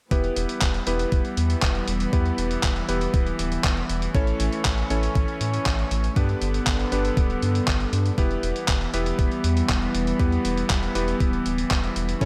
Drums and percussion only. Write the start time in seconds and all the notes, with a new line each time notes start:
0.11 kick, closed hi-hat
0.24 closed hi-hat
0.36 closed hi-hat
0.49 closed hi-hat
0.62 kick, clap, closed hi-hat
0.74 closed hi-hat
0.87 closed hi-hat
0.99 closed hi-hat
1.12 kick, closed hi-hat
1.25 closed hi-hat
1.37 closed hi-hat
1.50 closed hi-hat
1.62 kick, clap, closed hi-hat
1.75 closed hi-hat
1.88 closed hi-hat
2.00 closed hi-hat
2.13 kick, closed hi-hat
2.26 closed hi-hat
2.38 closed hi-hat
2.51 closed hi-hat
2.63 kick, clap, closed hi-hat
2.76 closed hi-hat
2.89 closed hi-hat
3.01 closed hi-hat
3.14 kick, closed hi-hat
3.27 closed hi-hat
3.39 closed hi-hat
3.52 closed hi-hat
3.64 kick, clap, closed hi-hat
3.77 closed hi-hat
3.89 closed hi-hat
4.02 closed hi-hat
4.15 kick, closed hi-hat
4.27 closed hi-hat
4.40 closed hi-hat
4.53 closed hi-hat
4.65 kick, clap, closed hi-hat
4.78 closed hi-hat
4.90 closed hi-hat
5.03 closed hi-hat
5.15 kick, closed hi-hat
5.28 closed hi-hat
5.41 closed hi-hat
5.54 closed hi-hat
5.66 kick, clap, closed hi-hat
5.79 closed hi-hat
5.91 closed hi-hat
6.04 closed hi-hat
6.16 kick, closed hi-hat
6.29 closed hi-hat
6.42 closed hi-hat
6.54 closed hi-hat
6.67 kick, clap, closed hi-hat
6.80 closed hi-hat
6.92 closed hi-hat
7.05 closed hi-hat
7.17 kick, closed hi-hat
7.30 closed hi-hat
7.42 closed hi-hat
7.55 closed hi-hat
7.67 kick, clap, closed hi-hat
7.80 closed hi-hat
7.93 closed hi-hat
8.06 closed hi-hat
8.18 kick, closed hi-hat
8.31 closed hi-hat
8.43 closed hi-hat
8.56 closed hi-hat
8.68 kick, clap, closed hi-hat
8.81 closed hi-hat
8.94 closed hi-hat
9.06 closed hi-hat
9.19 kick, closed hi-hat
9.31 closed hi-hat
9.44 closed hi-hat
9.57 closed hi-hat
9.69 kick, clap, closed hi-hat
9.82 closed hi-hat
9.95 closed hi-hat
10.07 closed hi-hat
10.20 kick, closed hi-hat
10.32 closed hi-hat
10.45 closed hi-hat
10.57 closed hi-hat
10.70 kick, clap, closed hi-hat
10.83 closed hi-hat
10.95 closed hi-hat
11.08 closed hi-hat
11.20 kick, closed hi-hat
11.33 closed hi-hat
11.46 closed hi-hat
11.58 closed hi-hat
11.71 kick, clap, closed hi-hat
11.84 closed hi-hat
11.96 closed hi-hat
12.09 closed hi-hat
12.21 kick, closed hi-hat